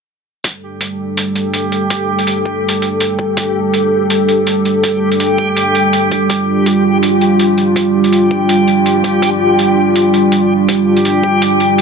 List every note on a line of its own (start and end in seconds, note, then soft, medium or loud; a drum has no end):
0.44 11.82 G3 medium
0.44 11.82 D4 medium
0.44 11.82 G4 medium
0.44 6.27 A4 medium
0.44 kick loud
0.44 closed hi-hat medium
0.81 closed hi-hat medium
1.17 closed hi-hat medium
1.36 closed hi-hat soft
1.54 closed hi-hat medium
1.72 closed hi-hat soft
1.90 kick loud
1.90 closed hi-hat medium
2.19 closed hi-hat soft
2.27 closed hi-hat medium
2.45 kick medium
2.69 closed hi-hat medium
2.82 closed hi-hat soft
3.00 closed hi-hat medium
3.19 kick loud
3.37 kick loud
3.37 closed hi-hat medium
3.74 closed hi-hat medium
4.10 closed hi-hat medium
4.29 closed hi-hat soft
4.47 closed hi-hat medium
4.65 closed hi-hat soft
4.83 kick loud
4.83 closed hi-hat medium
5.12 closed hi-hat soft
5.20 closed hi-hat medium
5.38 kick medium
5.57 closed hi-hat medium
5.75 closed hi-hat soft
5.93 closed hi-hat medium
6.11 kick loud
6.11 closed hi-hat soft
6.30 11.82 F4 medium
6.30 kick loud
6.30 closed hi-hat medium
6.66 closed hi-hat medium
7.03 closed hi-hat medium
7.21 closed hi-hat soft
7.39 closed hi-hat medium
7.58 closed hi-hat soft
7.76 kick loud
7.76 closed hi-hat medium
8.04 closed hi-hat soft
8.13 closed hi-hat medium
8.31 kick medium
8.49 closed hi-hat medium
8.68 closed hi-hat soft
8.86 closed hi-hat medium
9.04 kick loud
9.04 closed hi-hat soft
9.22 kick loud
9.22 closed hi-hat medium
9.59 closed hi-hat medium
9.96 closed hi-hat medium
10.14 closed hi-hat soft
10.32 closed hi-hat medium
10.69 kick loud
10.69 closed hi-hat medium
10.97 closed hi-hat soft
11.05 closed hi-hat medium
11.24 kick medium
11.42 closed hi-hat medium
11.60 closed hi-hat soft
11.78 closed hi-hat medium